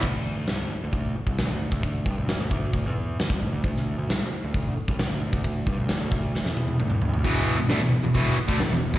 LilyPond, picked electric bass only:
\new Staff \with { instrumentName = "Picked electric bass" } { \clef bass \time 4/4 \key c \lydian \tempo 4 = 133 d,8. d,16 c,16 d,16 r16 d,16 d,8 r16 c,16 d,16 d,8 d,16 | d,8 g,16 d,8 d,16 d,8 d,16 e,8. d,16 c,16 d,16 d,16 | d,8. d,16 c,16 d,16 r16 d,16 d,8 r16 c,16 d,16 d,8 d,16 | d,8 g,16 d,8 d,16 d,8 d,16 e,8. d,16 c,16 d,16 d,16 |
e,,8. e,,16 d,16 e,,16 r16 e,,16 e,,8 r16 d,16 e,,16 e,,8 e,,16 | }